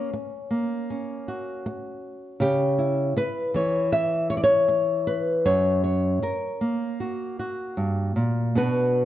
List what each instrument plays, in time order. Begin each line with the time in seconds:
Already playing: nylon-string guitar A#3 C#4 C#5
0.13 muted nylon-string guitar stroke
0.51 nylon-string guitar A#3
0.90 nylon-string guitar C#4
1.28 nylon-string guitar F#4
1.66 muted nylon-string guitar stroke
2.40 nylon-string guitar C#3 G4
2.78 nylon-string guitar E4
3.17 nylon-string guitar B4, muted nylon-string guitar stroke
3.54 nylon-string guitar E3 C#5
3.92 nylon-string guitar E5
4.30 nylon-string guitar C#5
4.37 nylon-string guitar D5
4.44 nylon-string guitar C#5
4.68 muted nylon-string guitar stroke
5.07 nylon-string guitar B4
5.46 nylon-string guitar F#2 C#5
5.84 nylon-string guitar C#5
6.22 nylon-string guitar A#4, muted nylon-string guitar stroke
6.61 nylon-string guitar A#3
7.00 nylon-string guitar F#4
7.39 nylon-string guitar F#4
7.77 nylon-string guitar G2
8.16 nylon-string guitar A#2
8.55 nylon-string guitar B2 B3 D4 F#4 B4